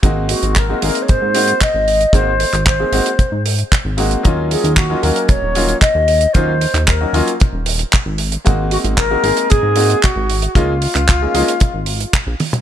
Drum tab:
HH |x-oxx-oxx-oxx-ox|x-oxx-oxx-oxx-ox|x-oxx-oxx-oxx-ox|x-oxx-oxx-oxx-ox|
CP |----x-------x---|---xx-------x---|----x-------x---|---xx-------x---|
T1 |----------------|----------------|----------------|----------------|
T2 |----------------|----------------|----------------|----------------|
BD |o---o---o---o---|o---o---o---o---|o---o---o---o---|o---o---o---o---|

HH |x-oxx-oxx-oxx-ox|x-oxx-oxx-oxx-ox|
CP |----x-------x---|---xx-------x---|
T1 |----------------|--------------o-|
T2 |----------------|---------------o|
BD |o---o---o---o---|o---o---o---o---|